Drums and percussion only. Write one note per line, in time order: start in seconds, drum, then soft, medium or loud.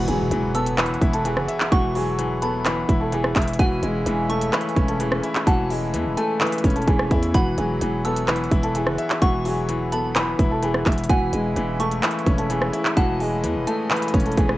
0.08 closed hi-hat medium
0.31 closed hi-hat medium
0.55 closed hi-hat medium
0.66 closed hi-hat medium
0.78 cross-stick medium
0.78 clap loud
0.78 closed hi-hat medium
0.86 closed hi-hat medium
0.94 closed hi-hat soft
1.02 kick medium
1.02 closed hi-hat medium
1.13 closed hi-hat medium
1.25 closed hi-hat medium
1.37 cross-stick medium
1.48 closed hi-hat medium
1.60 clap medium
1.72 kick loud
1.72 closed hi-hat loud
1.95 open hi-hat medium
2.19 closed hi-hat medium
2.42 closed hi-hat medium
2.66 cross-stick medium
2.66 clap loud
2.66 closed hi-hat medium
2.89 kick medium
2.89 closed hi-hat medium
3.12 closed hi-hat medium
3.24 cross-stick medium
3.36 kick medium
3.36 clap loud
3.36 closed hi-hat medium
3.42 closed hi-hat medium
3.48 closed hi-hat medium
3.54 closed hi-hat medium
3.59 kick loud
3.59 closed hi-hat medium
3.83 closed hi-hat medium
4.06 closed hi-hat medium
4.30 closed hi-hat medium
4.41 closed hi-hat medium
4.53 cross-stick medium
4.53 clap loud
4.53 closed hi-hat medium
4.61 closed hi-hat medium
4.69 closed hi-hat soft
4.76 kick medium
4.76 closed hi-hat medium
4.88 closed hi-hat medium
5.00 closed hi-hat medium
5.12 cross-stick loud
5.23 closed hi-hat medium
5.35 clap medium
5.47 kick loud
5.47 closed hi-hat loud
5.70 open hi-hat medium
5.94 closed hi-hat medium
6.17 closed hi-hat medium
6.41 clap loud
6.41 closed hi-hat soft
6.47 closed hi-hat medium
6.52 closed hi-hat medium
6.58 closed hi-hat medium
6.64 kick medium
6.64 closed hi-hat medium
6.70 closed hi-hat medium
6.76 closed hi-hat soft
6.82 closed hi-hat soft
6.88 kick loud
6.88 closed hi-hat medium
6.99 cross-stick medium
7.11 kick loud
7.11 closed hi-hat soft
7.23 closed hi-hat medium
7.34 kick loud
7.34 closed hi-hat loud
7.58 closed hi-hat medium
7.81 closed hi-hat medium
8.05 closed hi-hat medium
8.16 closed hi-hat medium
8.28 cross-stick medium
8.28 clap loud
8.28 closed hi-hat medium
8.36 closed hi-hat medium
8.44 closed hi-hat soft
8.52 kick medium
8.52 closed hi-hat medium
8.63 closed hi-hat medium
8.75 closed hi-hat medium
8.87 cross-stick medium
8.98 closed hi-hat medium
9.10 clap medium
9.22 kick loud
9.22 closed hi-hat medium
9.45 open hi-hat medium
9.69 closed hi-hat medium
9.92 closed hi-hat medium
10.16 cross-stick medium
10.16 clap loud
10.16 closed hi-hat medium
10.39 kick loud
10.39 closed hi-hat medium
10.62 closed hi-hat medium
10.74 cross-stick medium
10.86 kick loud
10.86 clap loud
10.86 closed hi-hat medium
10.92 closed hi-hat medium
10.98 closed hi-hat medium
11.04 closed hi-hat medium
11.09 kick loud
11.09 closed hi-hat medium
11.33 closed hi-hat medium
11.56 closed hi-hat medium
11.80 closed hi-hat medium
11.91 closed hi-hat medium
12.03 cross-stick medium
12.03 clap loud
12.03 closed hi-hat medium
12.11 closed hi-hat medium
12.19 closed hi-hat soft
12.26 kick medium
12.26 closed hi-hat medium
12.38 closed hi-hat medium
12.50 closed hi-hat medium
12.62 cross-stick medium
12.73 closed hi-hat medium
12.85 clap medium
12.97 kick loud
12.97 closed hi-hat loud
13.20 open hi-hat medium
13.44 closed hi-hat medium
13.67 closed hi-hat medium
13.91 clap loud
13.91 closed hi-hat soft
13.96 closed hi-hat medium
14.02 closed hi-hat medium
14.08 closed hi-hat medium
14.14 kick medium
14.14 closed hi-hat medium
14.20 closed hi-hat medium
14.26 closed hi-hat soft
14.32 closed hi-hat soft
14.37 kick loud
14.37 closed hi-hat medium
14.49 cross-stick medium